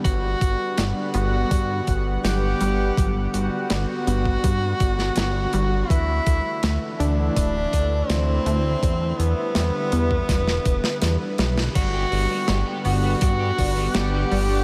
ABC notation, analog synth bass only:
X:1
M:4/4
L:1/8
Q:1/4=82
K:G
V:1 name="Analog synth bass" clef=bass
G,,, G,,, G,,, G,,, G,, G,,, G,,, G,,, | G,,, G,,, G,,, G,,, G,, G,,, G,,, G,,, | D,, D,, D,, D,, D,,, D,, D,, D,, | E,, E,, E,, E,, E,,, E,,, E,, B,,, |
G,,, G,,, G,,, G,,, G,, G,,, G,,, G,,, |]